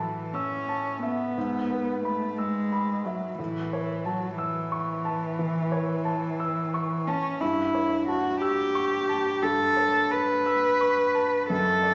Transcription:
Already playing: A2 E3 A4 A5
0.33 C#4 E6
0.69 A5
1.02 B3 E5
1.37 G#2
1.70 B4
2.03 A3 B5
2.37 G#3 E6
2.72 B5
3.04 F#3 E5
3.38 A2 E3
3.73 C#5
4.05 F#3 A5
4.38 E3 E6
4.72 C#6
5.05 A5
5.39 E3
5.72 C#5
6.05 A5
6.40 E6
6.74 C#6
7.07 C#4 A5
7.41 G2 E4
7.75 C#5
8.08 F#4 A5
8.42 G4 E6
8.75 C#6
9.09 A5
9.43 G2 A4
9.77 C#5
10.11 B4 A5
10.46 E6
10.81 C#6
11.15 A5
11.50 F#2 A4
11.83 D5

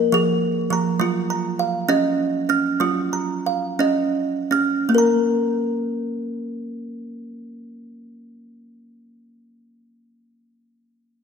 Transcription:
Already playing: A#4 D#5
0.12 F3 G#4
0.70 F3 A#5
1.00 F#3 F4
1.30 A#5
1.59 F5
1.89 C#4 D#5
2.49 C#4 F6
2.80 F#3 F4
3.13 A#5
3.46 F5
3.79 C#4 D#5
4.51 C#4 F6
4.89 A#3
4.94 A#4 A#5

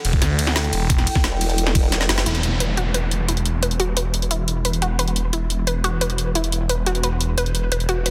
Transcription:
Already playing: E4 A4 G5
0.05 E1, closed hi-hat, ride
0.13 kick
0.22 D2, snare, closed hi-hat
0.39 closed hi-hat, ride
0.47 snare
0.56 snare, closed hi-hat
0.64 closed hi-hat
0.73 E1, closed hi-hat, ride
0.90 kick, closed hi-hat
0.98 snare, closed hi-hat
1.07 closed hi-hat, ride
1.15 kick, snare
1.24 E1, snare, closed hi-hat
1.41 open hi-hat, ride
1.50 closed hi-hat
1.58 closed hi-hat
1.67 snare
1.75 kick, closed hi-hat, ride
1.92 snare, closed hi-hat
2.01 snare, closed hi-hat
2.09 F#1, snare, closed hi-hat, ride
2.18 snare, closed hi-hat
2.26 E1 E4 B4 F#5, closed hi-hat, downlifter
2.35 closed hi-hat
2.43 closed hi-hat
2.60 B4, closed hi-hat
2.77 F#4, closed hi-hat
2.94 B4, closed hi-hat
3.11 closed hi-hat
3.28 E4, closed hi-hat
3.37 closed hi-hat
3.46 closed hi-hat
3.63 B4, closed hi-hat
3.71 closed hi-hat
3.80 F#4, closed hi-hat
3.97 B4, closed hi-hat
4.14 closed hi-hat
4.22 closed hi-hat
4.31 E4, closed hi-hat
4.48 closed hi-hat
4.65 B4, closed hi-hat
4.73 closed hi-hat
4.82 F#4, closed hi-hat
4.99 B4, closed hi-hat
5.08 closed hi-hat
5.16 closed hi-hat
5.33 E4, closed hi-hat
5.50 closed hi-hat
5.67 B4, closed hi-hat
5.84 F#4, closed hi-hat
6.01 B4, closed hi-hat
6.10 closed hi-hat
6.18 closed hi-hat
6.35 E4, closed hi-hat
6.44 closed hi-hat
6.52 closed hi-hat
6.69 B4, closed hi-hat
6.86 F#4, closed hi-hat
6.95 closed hi-hat
7.03 B4, closed hi-hat
7.21 closed hi-hat
7.38 B4, closed hi-hat
7.46 closed hi-hat
7.55 closed hi-hat
7.72 E1 B4 G5, closed hi-hat
7.80 closed hi-hat
7.89 F#4, closed hi-hat
8.06 B4, closed hi-hat

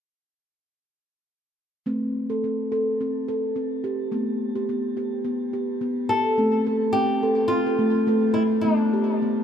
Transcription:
1.86 A3 C4
2.30 A4
2.44 C4
2.72 A4
3.01 C4
3.28 A4
3.56 C4
3.84 G4
4.12 A3 B3
4.55 G4
4.69 B3
4.97 G4
5.25 B3
5.53 G4
5.81 B3
6.09 G4 A4
6.38 A3 C4
6.67 A4
6.93 C4 G4
7.23 A4
7.48 C4 F4
7.67 A4
7.79 A3
7.95 C4
8.07 A3 A4
8.34 A3 E4
8.61 A3 B3 D4
8.93 G4
9.22 B3

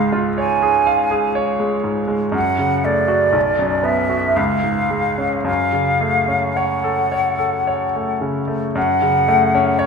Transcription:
Already playing: C#2 G#2 G#3 F5
0.12 F4
0.38 C#5 G#5
0.62 G#4
0.87 F5
1.11 G#4
1.35 C#5
1.60 G#3
1.84 G#2
2.08 G#3
2.32 F#2 F#5
2.58 C#3
2.84 A3 D5
3.08 F#4
3.33 B1
3.59 F#2
3.83 B3 E5
4.09 F#4
4.36 C#2 F5
4.63 G#2
4.90 G#3
5.18 C#4
5.44 F#2 F5
5.73 C#3
6.01 A3
6.28 C#4
6.56 C#5 F#5
6.84 A4
7.12 C#5
7.39 A4
7.67 C#5
7.95 A3
8.21 C#3
8.48 A3
8.75 F#2 F#5
9.02 C#3
9.28 A3
9.55 C#4
9.79 C#5

